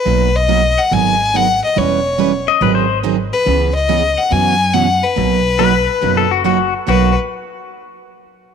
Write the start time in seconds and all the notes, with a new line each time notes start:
Already playing: B4
0.05 B1 B2 F#3 A#3 D#4 F#4
0.36 D#5
0.48 B2 F#3 A#3 D#4 F#4
0.78 F#5
0.91 G#1 D#3 F#3 B3 D#4 G#4 G#5
1.34 D#3 F#3 B3 D#4 G#4 F#5
1.64 D#5
1.76 E1 E3 G3 C#4 E4 B4 C#5
2.18 E3 G3 C#4 E4 B4
2.48 D#5
2.61 G#1 D#3 F#3 C4 D#4 G#4 B4
2.75 C5
3.03 D#3 F#3 C4 D#4 G#4
3.33 B4
3.46 C#2 C#3 E3 B3 C#4 G#4
3.75 D#5
3.89 C#3 E3 B3 C#4 G#4
4.17 F#5
4.30 F#2 B2 E3 B3 C#4 F#4 G#5
4.73 B2 E3 B3 C#4 F#4 F#5
5.03 B4
5.16 B1 B2 F#3 A#3 D#4 F#4
5.58 B2 F#3 A#3 D#4 F#4 B4
6.01 F#1 B2 F#3 A#3 D#4 F#4
6.17 A4
6.31 F#4
6.44 B2 F#3 A#3 D#4 F#4
6.87 B1 B2 F#3 A#3 D#4 F#4 B4